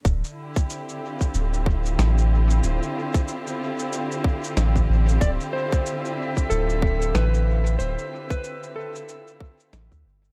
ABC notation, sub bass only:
X:1
M:4/4
L:1/16
Q:"Swing 16ths" 1/4=93
K:Ddor
V:1 name="Sub bass" clef=bass
D,,, z6 z D,,,4 A,,,4 | D,,, z8 z3 A,,,2 A,,,2 | D,,, z6 z D,,,4 A,,,4 | D,,, z8 z3 A,,, D,, G,,,2 |]